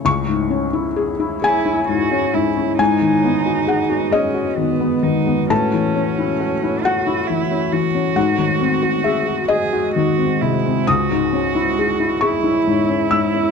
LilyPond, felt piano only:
\new Staff \with { instrumentName = "Felt piano" } { \time 6/8 \key cis \minor \tempo 4. = 45 << { cis'''4. gis''4. | gis''4 fis''8 dis''4. | a''4. fis''4. | fis''4 e''8 dis''4. |
dis'''4. cis'''4 e'''8 | } \\ { cis,16 gis,16 cis'16 e'16 gis'16 e'16 gis'16 e'16 gis,16 cis'16 gis,16 cis'16 | gis,16 dis16 b16 fis'16 gis'16 fis'16 gis'16 fis'16 dis16 b16 dis16 b16 | a,16 e16 cis'16 e'16 fis'16 e'16 fis'16 e'16 e16 cis'16 e16 cis'16 | gis,16 dis16 bis16 fis'16 gis'16 fis'16 gis'16 fis'16 dis16 bis16 bis,16 bis16 |
cis,16 gis,16 cis'16 e'16 gis'16 e'16 gis'16 e'16 gis,16 cis'16 gis,16 cis'16 | } >> }